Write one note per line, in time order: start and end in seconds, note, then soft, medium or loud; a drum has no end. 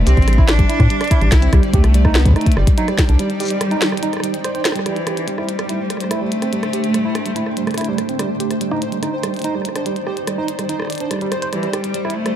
0.00 1.53 D4 medium
0.00 12.36 C5 medium
0.00 4.87 D5 medium
0.00 1.53 E5 medium
0.00 12.36 G5 medium
0.07 0.15 C2 medium
0.07 0.48 C4 loud
0.07 0.17 G4 medium
0.07 closed hi-hat medium
0.07 shaker medium
0.17 0.65 A1 medium
0.17 kick loud
0.17 closed hi-hat soft
0.22 closed hi-hat soft
0.28 0.37 G3 medium
0.28 cross-stick medium
0.28 closed hi-hat medium
0.33 closed hi-hat soft
0.38 0.47 E4 loud
0.38 kick loud
0.48 1.33 D4 loud
0.48 cross-stick medium
0.48 snare loud
0.48 closed hi-hat medium
0.59 0.64 G3 medium
0.59 kick loud
0.59 closed hi-hat medium
0.69 0.79 E4 medium
0.69 closed hi-hat medium
0.80 0.88 A2 medium
0.80 kick loud
0.80 cross-stick medium
0.80 closed hi-hat soft
0.90 1.00 G3 medium
0.90 closed hi-hat medium
1.01 cross-stick medium
1.01 closed hi-hat soft
1.04 closed hi-hat soft
1.08 kick loud
1.08 closed hi-hat soft
1.11 1.20 E4 loud
1.11 closed hi-hat medium
1.21 1.29 A1 loud
1.21 1.30 G3 loud
1.21 closed hi-hat soft
1.32 1.48 C2 medium
1.32 1.54 E4 loud
1.32 kick loud
1.32 cross-stick medium
1.32 snare loud
1.32 closed hi-hat medium
1.32 shaker medium
1.42 1.51 C4 medium
1.42 closed hi-hat medium
1.53 1.61 C2 loud
1.53 1.75 G3 loud
1.53 1.62 G3 loud
1.53 4.86 D#4 loud
1.53 kick loud
1.53 cross-stick medium
1.53 closed hi-hat medium
1.63 closed hi-hat soft
1.74 1.82 D#2 medium
1.74 2.17 A3 loud
1.74 1.83 G4 medium
1.74 kick loud
1.74 closed hi-hat medium
1.84 2.32 C2 medium
1.84 cross-stick medium
1.84 closed hi-hat medium
1.94 2.03 G3 medium
1.94 closed hi-hat medium
2.05 2.14 D#4 loud
2.05 kick loud
2.05 cross-stick medium
2.15 2.35 B3 loud
2.15 snare loud
2.26 2.31 G3 medium
2.26 kick loud
2.26 closed hi-hat medium
2.28 kick medium
2.31 kick medium
2.33 2.58 A3 loud
2.33 2.46 D#4 medium
2.33 kick medium
2.33 cross-stick medium
2.33 closed hi-hat soft
2.41 closed hi-hat soft
2.46 kick loud
2.46 closed hi-hat medium
2.52 closed hi-hat medium
2.57 2.65 G1 loud
2.57 2.77 G3 loud
2.57 2.67 G3 medium
2.57 cross-stick medium
2.67 kick loud
2.67 closed hi-hat medium
2.78 2.87 F#3 loud
2.78 2.87 D#4 loud
2.78 closed hi-hat medium
2.88 2.97 G3 loud
2.88 cross-stick medium
2.88 closed hi-hat soft
2.99 4.40 G3 loud
2.99 kick loud
2.99 snare loud
2.99 closed hi-hat medium
3.03 5.38 D5 medium
3.09 3.17 C2 medium
3.09 3.18 D4 medium
3.09 closed hi-hat medium
3.19 3.28 G3 loud
3.19 closed hi-hat medium
3.30 closed hi-hat soft
3.40 3.50 G4 medium
3.40 closed hi-hat medium
3.40 shaker soft
3.43 shaker soft
3.45 shaker soft
3.48 closed hi-hat medium
3.48 shaker medium
3.61 3.70 G3 medium
3.61 cross-stick medium
3.61 closed hi-hat medium
3.71 3.80 D#4 loud
3.71 closed hi-hat soft
3.82 snare loud
3.82 closed hi-hat medium
3.92 3.98 G3 medium
3.92 cross-stick medium
3.97 closed hi-hat medium
4.03 4.13 D#4 medium
4.03 closed hi-hat medium
4.13 cross-stick soft
4.13 closed hi-hat soft
4.17 cross-stick soft
4.20 4.32 G3 medium
4.20 cross-stick medium
4.20 closed hi-hat medium
4.34 closed hi-hat medium
4.44 4.50 C5 medium
4.44 cross-stick medium
4.44 closed hi-hat medium
4.55 4.65 C5 medium
4.55 closed hi-hat soft
4.65 cross-stick medium
4.65 snare loud
4.65 closed hi-hat medium
4.65 shaker medium
4.72 4.84 G3 medium
4.72 cross-stick medium
4.72 closed hi-hat medium
4.79 cross-stick medium
4.86 5.29 E3 medium
4.86 4.95 G3 loud
4.86 8.19 A3 medium
4.86 12.36 C5 medium
4.86 cross-stick medium
4.86 closed hi-hat medium
4.96 8.19 D4 medium
4.96 closed hi-hat soft
5.07 5.17 G4 medium
5.07 cross-stick medium
5.07 closed hi-hat medium
5.17 closed hi-hat medium
5.28 5.37 G3 medium
5.28 6.13 G3 loud
5.28 closed hi-hat medium
5.38 5.47 E4 medium
5.38 cross-stick medium
5.49 closed hi-hat medium
5.59 5.64 G3 medium
5.59 cross-stick medium
5.59 closed hi-hat medium
5.69 5.79 E4 medium
5.69 closed hi-hat medium
5.90 6.00 G3 medium
5.90 cross-stick soft
5.90 closed hi-hat medium
5.97 cross-stick soft
5.97 closed hi-hat medium
6.04 cross-stick soft
6.11 7.99 A3 loud
6.11 6.20 E4 loud
6.11 cross-stick medium
6.11 closed hi-hat medium
6.22 6.30 G3 medium
6.32 8.19 E5 medium
6.32 closed hi-hat medium
6.42 6.51 C4 medium
6.42 cross-stick medium
6.42 closed hi-hat medium
6.53 6.62 G3 loud
6.53 closed hi-hat medium
6.63 cross-stick medium
6.63 closed hi-hat soft
6.73 6.83 G4 medium
6.73 closed hi-hat medium
6.84 closed hi-hat medium
6.94 7.03 G3 medium
6.94 cross-stick soft
6.94 closed hi-hat medium
7.05 7.14 E4 medium
7.15 cross-stick medium
7.15 closed hi-hat medium
7.26 7.31 G3 medium
7.26 closed hi-hat medium
7.36 7.46 E4 medium
7.36 closed hi-hat medium
7.46 cross-stick soft
7.57 7.67 G3 medium
7.57 closed hi-hat medium
7.67 cross-stick medium
7.67 closed hi-hat soft
7.71 cross-stick medium
7.71 closed hi-hat soft
7.74 closed hi-hat soft
7.78 7.87 E4 loud
7.78 cross-stick soft
7.78 closed hi-hat medium
7.81 closed hi-hat soft
7.85 7.97 G3 medium
7.85 closed hi-hat soft
7.98 cross-stick medium
7.98 closed hi-hat medium
8.09 8.18 C4 medium
8.09 closed hi-hat medium
8.19 8.28 G3 loud
8.19 11.53 D#4 medium
8.19 cross-stick medium
8.19 closed hi-hat medium
8.40 8.50 G4 medium
8.40 closed hi-hat medium
8.51 cross-stick soft
8.51 closed hi-hat soft
8.60 8.70 G3 medium
8.60 12.36 D5 medium
8.60 closed hi-hat medium
8.71 8.80 D#4 loud
8.71 cross-stick medium
8.82 closed hi-hat medium
8.92 8.98 G3 medium
8.92 closed hi-hat medium
9.03 9.13 D#4 medium
9.03 cross-stick soft
9.03 closed hi-hat medium
9.23 9.33 G3 medium
9.23 cross-stick medium
9.23 closed hi-hat medium
9.34 closed hi-hat soft
9.37 closed hi-hat soft
9.39 closed hi-hat soft
9.42 closed hi-hat soft
9.44 9.53 D#4 loud
9.44 closed hi-hat medium
9.55 9.64 G3 medium
9.55 cross-stick soft
9.62 cross-stick soft
9.62 closed hi-hat medium
9.69 cross-stick soft
9.76 9.84 D4 medium
9.76 cross-stick medium
9.76 closed hi-hat medium
9.86 9.95 G3 loud
9.86 closed hi-hat medium
9.96 closed hi-hat soft
10.07 10.17 G4 medium
10.07 cross-stick medium
10.17 closed hi-hat soft
10.27 10.37 G3 medium
10.27 cross-stick medium
10.27 closed hi-hat medium
10.38 10.47 D#4 loud
10.48 closed hi-hat medium
10.59 10.64 G3 medium
10.59 cross-stick soft
10.59 closed hi-hat medium
10.69 10.79 D#4 medium
10.69 closed hi-hat medium
10.80 cross-stick medium
10.82 cross-stick medium
10.85 cross-stick soft
10.87 11.00 D5 medium
10.87 cross-stick soft
10.87 closed hi-hat medium
10.93 closed hi-hat medium
10.98 closed hi-hat soft
11.00 11.10 D4 medium
11.00 closed hi-hat soft
11.11 11.20 G3 loud
11.11 cross-stick soft
11.11 closed hi-hat medium
11.13 cross-stick soft
11.19 11.30 G3 medium
11.19 cross-stick soft
11.19 closed hi-hat soft
11.32 11.41 C5 medium
11.32 cross-stick medium
11.32 closed hi-hat medium
11.42 11.48 C5 medium
11.42 closed hi-hat medium
11.53 11.72 E3 medium
11.53 11.62 G3 loud
11.53 12.36 A3 medium
11.53 cross-stick soft
11.53 closed hi-hat medium
11.63 11.73 G3 medium
11.63 closed hi-hat soft
11.73 12.17 G3 loud
11.73 11.84 G4 medium
11.73 cross-stick medium
11.73 closed hi-hat medium
11.84 closed hi-hat soft
11.94 12.03 G3 medium
11.94 12.36 D4 medium
11.94 closed hi-hat medium
12.05 12.14 E4 loud
12.05 cross-stick soft
12.10 closed hi-hat medium
12.15 12.36 A3 loud
12.26 12.31 G3 medium
12.26 cross-stick medium
12.26 closed hi-hat soft